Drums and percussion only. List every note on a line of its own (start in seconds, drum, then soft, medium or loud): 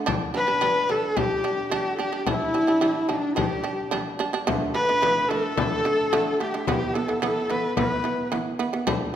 0.08 frame drum medium
0.35 frame drum soft
0.62 frame drum medium
0.90 frame drum medium
1.17 frame drum medium
1.45 frame drum soft
1.72 frame drum medium
2.00 frame drum soft
2.27 frame drum medium
2.54 frame drum soft
2.82 frame drum medium
3.10 frame drum medium
3.38 frame drum medium
3.66 frame drum soft
3.93 frame drum medium
4.21 frame drum soft
4.48 frame drum medium
4.76 frame drum soft
5.03 frame drum medium
5.30 frame drum medium
5.57 frame drum medium
5.85 frame drum soft
6.12 frame drum medium
6.40 frame drum soft
6.67 frame drum medium
6.95 frame drum soft
7.23 frame drum medium
7.50 frame drum medium
7.77 frame drum medium
8.05 frame drum soft
8.32 frame drum medium
8.60 frame drum soft
8.87 frame drum medium